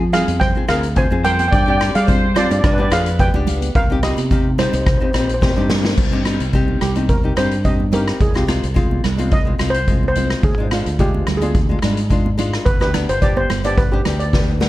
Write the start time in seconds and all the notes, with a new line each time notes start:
Already playing: F3
0.13 C4 F4 G#4 F5, cross-stick, closed hi-hat, low conga
0.28 F2, closed hi-hat, high conga
0.40 C5 G5, kick, cross-stick, closed hi-hat, low conga
0.55 C4 F4 G#4
0.68 D2 C4 F4 G#4 A#4 F5, cross-stick, closed hi-hat
0.83 closed hi-hat
0.96 C4 F4 G#4 C5 G#5, kick, closed hi-hat
1.10 F2 C4 F4 G#4, high conga
1.24 A#4 C5 G5, closed hi-hat, low conga
1.32 G5
1.39 G5, closed hi-hat, high conga
1.48 D5 G5
1.52 G2 G5, kick, closed hi-hat
1.63 C4 G5
1.67 D4 G4 G5
1.78 C4 D4 G4 G5, cross-stick, closed hi-hat
1.95 G3 G#4 F5, closed hi-hat
2.07 C4 D4 F4 C5, kick, closed hi-hat
2.35 C4 D4 F4 G4 C5 D5, cross-stick, closed hi-hat, low conga
2.44 D5
2.51 G2 D5, closed hi-hat, high conga
2.59 D5
2.64 G2 B4 D5, kick, cross-stick, closed hi-hat, low conga
2.74 B3 D5
2.79 D4 G4 D5
2.90 F2 B3 D4 F4 G#4 F5, cross-stick, closed hi-hat
3.06 closed hi-hat
3.19 B3 D4 G4 B4 G5, kick, closed hi-hat
3.34 C#2 B3 D4 G4, high conga
3.47 closed hi-hat, low conga
3.62 closed hi-hat, high conga
3.75 C2 A#4 F5, kick, closed hi-hat
3.90 C4 D#4 G4
4.03 C4 D#4 F4 G4 D#5, cross-stick, closed hi-hat, low conga
4.17 C3, closed hi-hat, high conga
4.30 C4 D#4 G4, kick, closed hi-hat
4.58 C4 D#4 G4 C5, cross-stick, closed hi-hat, low conga
4.66 C5
4.73 C2 C5, closed hi-hat, high conga
4.81 C5
4.86 C5, kick, cross-stick, closed hi-hat
4.98 C4 D#4 C5
5.02 G4 C5
5.11 A#1 C4 D#4 G4 C5, cross-stick, closed hi-hat
5.19 C5
5.27 C5, closed hi-hat
5.34 C5
5.41 C4 D#4 G4 C5, kick, snare
5.50 C5
5.56 G2 C4 D#4 G4 C5
5.70 snare, high conga, low conga
5.84 snare, high conga
5.97 C2, kick, crash
6.12 G2 C4 D#4 G4
6.25 C4 D#4 G4, cross-stick, closed hi-hat, high conga
6.40 C2, closed hi-hat
6.53 C4 D#4 G4, kick, closed hi-hat
6.68 high conga
6.81 C2 G4, cross-stick, closed hi-hat, low conga
6.95 C4 D#4 G4, closed hi-hat, high conga
7.09 A#4, kick, closed hi-hat
7.23 C4 D#4 G4
7.36 G2 C4 D#4 G4 C5, cross-stick, closed hi-hat, low conga
7.51 closed hi-hat
7.64 C4 D#4 G4 D#5, kick, closed hi-hat
7.80 high conga
7.92 C4 D#4 G4 A#4, closed hi-hat, low conga
8.08 cross-stick, closed hi-hat
8.21 C2 G#4, kick, closed hi-hat
8.34 C2 G#3 C4 F4 G4, cross-stick
8.47 G#3 C4 F4, cross-stick, closed hi-hat, high conga
8.63 C2, closed hi-hat
8.74 G#3 C4 F4, kick, closed hi-hat
8.91 high conga
9.04 C2, cross-stick, closed hi-hat, low conga
9.17 G#3 C4 F4, closed hi-hat, high conga
9.31 D#5, kick, closed hi-hat
9.45 G#3 C4 F4
9.58 C2 G#3 C4 F4, cross-stick, closed hi-hat, low conga
9.70 C5
9.74 closed hi-hat
9.88 G#3 C4 F4, kick, closed hi-hat
10.03 high conga
10.08 C5
10.15 G#3 C4 F4, closed hi-hat, low conga
10.30 cross-stick, closed hi-hat
10.43 D2 G#4, kick, closed hi-hat
10.58 G#2 G#3 D4 F4
10.71 G#3 D4 F4, cross-stick, closed hi-hat, high conga
10.86 D2, closed hi-hat
10.99 G#3 D4 F4 G4, kick, closed hi-hat
11.14 high conga
11.27 D2, cross-stick, closed hi-hat, low conga
11.37 G#3 G#4
11.41 D4 F4, closed hi-hat, high conga
11.55 kick, closed hi-hat
11.69 G#3 D4 F4
11.82 G#2 G#3 D4 F4, cross-stick, closed hi-hat, low conga
11.97 closed hi-hat
12.10 G#3 D4 F4, kick, closed hi-hat
12.26 high conga
12.38 G#3 D4 F4, closed hi-hat, low conga
12.53 cross-stick, closed hi-hat
12.65 G1 B4, kick, closed hi-hat
12.80 D2 B3 D4 G4 B4, cross-stick
12.94 B3 D4 G4, cross-stick, closed hi-hat, high conga, low conga
13.09 G1 C5, closed hi-hat
13.22 B3 D4 G4 D5, kick, closed hi-hat
13.37 C5, high conga
13.50 G1, cross-stick, closed hi-hat, low conga
13.64 B3 D4 G4 D5, closed hi-hat, high conga
13.78 B4, kick, closed hi-hat
13.92 B3 D4 G4
14.05 D2 B3 D4 G4, cross-stick, closed hi-hat, low conga
14.19 D5, closed hi-hat
14.33 B3 D4 G4, kick, snare
14.60 B3 D4 G4, snare, low conga